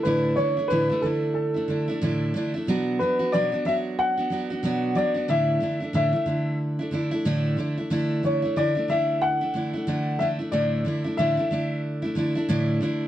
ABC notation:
X:1
M:4/4
L:1/16
Q:"Swing 16ths" 1/4=92
K:Amix
V:1 name="Upright piano"
B2 c2 B2 A2 A6 z2 | z2 B2 d2 e2 f6 d2 | e4 e4 z8 | z2 c2 d2 e2 f6 e2 |
d4 e4 z8 |]
V:2 name="Steel-string acoustic guitar"
[A,,D,A,DE]2 [D,A,DE] [A,DE] [A,,D,A,DE] [A,DE] [D,A,DE]3 [A,DE] [D,A,DE] [A,DE] [A,,D,A,DE]2 [D,A,DE] [A,DE] | [B,,F,B,DF]2 [F,B,DF] [B,DF] [B,,F,B,DF] [B,DF] [F,B,DF]3 [B,DF] [F,B,DF] [B,DF] [B,,F,B,DF]2 [F,B,DF] [B,DF] | [A,,D,A,DE]2 [D,A,DE] [A,DE] [A,,D,A,DE] [A,DE] [D,A,DE]3 [A,DE] [D,A,DE] [A,DE] [A,,D,A,DE]2 [D,A,DE] [A,DE] | [D,A,DE]2 [D,A,DE] [A,DE] [D,A,DE] [A,DE] [D,A,DE]3 [A,DE] [D,A,DE] [A,DE] [D,A,DE]2 [D,A,DE] [A,DE] |
[A,,D,A,DE]2 [D,A,DE] [A,DE] [A,,D,A,DE] [A,DE] [D,A,DE]3 [A,DE] [D,A,DE] [A,DE] [A,,D,A,DE]2 [D,A,DE]2 |]